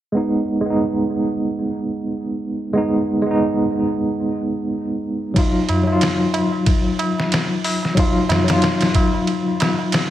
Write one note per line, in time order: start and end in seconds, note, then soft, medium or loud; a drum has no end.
0.12 0.60 G#3 medium
0.12 0.61 B3 medium
0.17 0.62 D#4 medium
0.61 2.70 G#3 medium
0.66 2.72 B3 medium
0.70 2.74 D#4 medium
2.73 3.21 G#3 medium
2.73 3.22 B3 medium
2.78 3.23 D#4 medium
3.22 5.30 G#3 medium
3.26 5.33 B3 medium
3.31 5.35 D#4 medium
5.34 5.82 F#3 medium
5.34 5.83 D#4 medium
5.34 kick loud
5.34 ride medium
5.34 tabla na soft
5.38 5.84 F4 medium
5.69 ride medium
5.69 tabla na medium
5.69 tabla ge medium
5.83 7.92 F#3 medium
5.83 tabla na soft
5.88 7.94 D#4 medium
5.92 7.96 F4 medium
6.01 snare loud
6.01 ride medium
6.01 tabla na soft
6.34 ride medium
6.34 tabla na medium
6.52 tabla na soft
6.66 kick loud
6.66 ride medium
6.66 tabla na soft
6.99 ride medium
6.99 tabla na loud
7.18 snare soft
7.18 tabla na soft
7.32 snare loud
7.32 ride medium
7.32 tabla na soft
7.64 open hi-hat medium
7.64 tabla na medium
7.83 snare soft
7.83 tabla na medium
7.95 8.43 F#3 medium
7.95 8.44 D#4 medium
7.95 kick loud
7.95 ride medium
7.95 tabla na soft
7.99 8.45 F4 medium
8.29 snare medium
8.29 ride medium
8.29 tabla na medium
8.29 tabla ge medium
8.44 10.10 F#3 medium
8.48 10.10 D#4 medium
8.48 snare medium
8.48 ride medium
8.48 tabla na medium
8.53 10.10 F4 medium
8.62 snare medium
8.62 ride medium
8.62 tabla na soft
8.81 snare medium
8.81 ride medium
8.95 kick medium
8.95 ride medium
8.95 tabla na medium
9.14 tabla na soft
9.27 ride medium
9.27 tabla na soft
9.60 snare loud
9.60 ride medium
9.60 tabla na medium
9.79 tabla na soft
9.92 snare loud
9.92 ride medium
9.92 tabla na soft